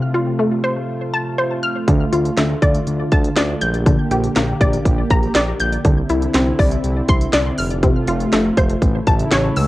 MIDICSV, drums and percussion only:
0, 0, Header, 1, 2, 480
1, 0, Start_track
1, 0, Tempo, 495868
1, 1820, Time_signature, 4, 2, 24, 8
1, 9365, End_track
2, 0, Start_track
2, 0, Title_t, "Drums"
2, 1819, Note_on_c, 9, 36, 97
2, 1819, Note_on_c, 9, 42, 83
2, 1916, Note_off_c, 9, 36, 0
2, 1916, Note_off_c, 9, 42, 0
2, 2059, Note_on_c, 9, 42, 78
2, 2155, Note_off_c, 9, 42, 0
2, 2181, Note_on_c, 9, 42, 47
2, 2278, Note_off_c, 9, 42, 0
2, 2297, Note_on_c, 9, 42, 79
2, 2299, Note_on_c, 9, 38, 109
2, 2394, Note_off_c, 9, 42, 0
2, 2396, Note_off_c, 9, 38, 0
2, 2538, Note_on_c, 9, 36, 91
2, 2538, Note_on_c, 9, 42, 73
2, 2635, Note_off_c, 9, 36, 0
2, 2635, Note_off_c, 9, 42, 0
2, 2658, Note_on_c, 9, 42, 52
2, 2755, Note_off_c, 9, 42, 0
2, 2779, Note_on_c, 9, 42, 69
2, 2875, Note_off_c, 9, 42, 0
2, 3018, Note_on_c, 9, 42, 72
2, 3020, Note_on_c, 9, 36, 100
2, 3115, Note_off_c, 9, 42, 0
2, 3117, Note_off_c, 9, 36, 0
2, 3141, Note_on_c, 9, 42, 52
2, 3238, Note_off_c, 9, 42, 0
2, 3257, Note_on_c, 9, 38, 107
2, 3260, Note_on_c, 9, 42, 73
2, 3354, Note_off_c, 9, 38, 0
2, 3357, Note_off_c, 9, 42, 0
2, 3498, Note_on_c, 9, 42, 78
2, 3594, Note_off_c, 9, 42, 0
2, 3620, Note_on_c, 9, 42, 48
2, 3717, Note_off_c, 9, 42, 0
2, 3739, Note_on_c, 9, 36, 100
2, 3739, Note_on_c, 9, 42, 83
2, 3836, Note_off_c, 9, 36, 0
2, 3836, Note_off_c, 9, 42, 0
2, 3980, Note_on_c, 9, 42, 79
2, 4077, Note_off_c, 9, 42, 0
2, 4102, Note_on_c, 9, 42, 48
2, 4199, Note_off_c, 9, 42, 0
2, 4218, Note_on_c, 9, 42, 80
2, 4220, Note_on_c, 9, 38, 110
2, 4315, Note_off_c, 9, 42, 0
2, 4317, Note_off_c, 9, 38, 0
2, 4459, Note_on_c, 9, 36, 92
2, 4459, Note_on_c, 9, 42, 75
2, 4556, Note_off_c, 9, 36, 0
2, 4556, Note_off_c, 9, 42, 0
2, 4579, Note_on_c, 9, 42, 52
2, 4676, Note_off_c, 9, 42, 0
2, 4697, Note_on_c, 9, 36, 91
2, 4699, Note_on_c, 9, 42, 71
2, 4794, Note_off_c, 9, 36, 0
2, 4796, Note_off_c, 9, 42, 0
2, 4939, Note_on_c, 9, 42, 68
2, 4941, Note_on_c, 9, 36, 103
2, 5036, Note_off_c, 9, 42, 0
2, 5038, Note_off_c, 9, 36, 0
2, 5061, Note_on_c, 9, 42, 53
2, 5158, Note_off_c, 9, 42, 0
2, 5177, Note_on_c, 9, 38, 111
2, 5180, Note_on_c, 9, 42, 74
2, 5274, Note_off_c, 9, 38, 0
2, 5276, Note_off_c, 9, 42, 0
2, 5417, Note_on_c, 9, 42, 77
2, 5514, Note_off_c, 9, 42, 0
2, 5541, Note_on_c, 9, 42, 50
2, 5638, Note_off_c, 9, 42, 0
2, 5659, Note_on_c, 9, 42, 83
2, 5660, Note_on_c, 9, 36, 103
2, 5756, Note_off_c, 9, 42, 0
2, 5757, Note_off_c, 9, 36, 0
2, 5899, Note_on_c, 9, 42, 78
2, 5996, Note_off_c, 9, 42, 0
2, 6023, Note_on_c, 9, 42, 47
2, 6120, Note_off_c, 9, 42, 0
2, 6139, Note_on_c, 9, 42, 82
2, 6141, Note_on_c, 9, 38, 109
2, 6236, Note_off_c, 9, 42, 0
2, 6238, Note_off_c, 9, 38, 0
2, 6379, Note_on_c, 9, 36, 89
2, 6380, Note_on_c, 9, 46, 54
2, 6476, Note_off_c, 9, 36, 0
2, 6476, Note_off_c, 9, 46, 0
2, 6500, Note_on_c, 9, 42, 53
2, 6597, Note_off_c, 9, 42, 0
2, 6621, Note_on_c, 9, 42, 71
2, 6718, Note_off_c, 9, 42, 0
2, 6858, Note_on_c, 9, 42, 68
2, 6861, Note_on_c, 9, 36, 100
2, 6955, Note_off_c, 9, 42, 0
2, 6958, Note_off_c, 9, 36, 0
2, 6981, Note_on_c, 9, 42, 55
2, 7078, Note_off_c, 9, 42, 0
2, 7097, Note_on_c, 9, 38, 110
2, 7100, Note_on_c, 9, 42, 74
2, 7194, Note_off_c, 9, 38, 0
2, 7197, Note_off_c, 9, 42, 0
2, 7337, Note_on_c, 9, 46, 78
2, 7433, Note_off_c, 9, 46, 0
2, 7459, Note_on_c, 9, 42, 50
2, 7556, Note_off_c, 9, 42, 0
2, 7579, Note_on_c, 9, 42, 83
2, 7580, Note_on_c, 9, 36, 104
2, 7676, Note_off_c, 9, 42, 0
2, 7677, Note_off_c, 9, 36, 0
2, 7816, Note_on_c, 9, 42, 78
2, 7913, Note_off_c, 9, 42, 0
2, 7940, Note_on_c, 9, 42, 48
2, 8037, Note_off_c, 9, 42, 0
2, 8058, Note_on_c, 9, 42, 83
2, 8060, Note_on_c, 9, 38, 107
2, 8155, Note_off_c, 9, 42, 0
2, 8157, Note_off_c, 9, 38, 0
2, 8297, Note_on_c, 9, 42, 75
2, 8298, Note_on_c, 9, 36, 91
2, 8394, Note_off_c, 9, 42, 0
2, 8395, Note_off_c, 9, 36, 0
2, 8418, Note_on_c, 9, 42, 51
2, 8514, Note_off_c, 9, 42, 0
2, 8537, Note_on_c, 9, 36, 89
2, 8539, Note_on_c, 9, 42, 72
2, 8634, Note_off_c, 9, 36, 0
2, 8636, Note_off_c, 9, 42, 0
2, 8778, Note_on_c, 9, 42, 69
2, 8781, Note_on_c, 9, 36, 97
2, 8875, Note_off_c, 9, 42, 0
2, 8877, Note_off_c, 9, 36, 0
2, 8900, Note_on_c, 9, 42, 54
2, 8996, Note_off_c, 9, 42, 0
2, 9016, Note_on_c, 9, 38, 114
2, 9019, Note_on_c, 9, 42, 74
2, 9113, Note_off_c, 9, 38, 0
2, 9116, Note_off_c, 9, 42, 0
2, 9256, Note_on_c, 9, 46, 78
2, 9352, Note_off_c, 9, 46, 0
2, 9365, End_track
0, 0, End_of_file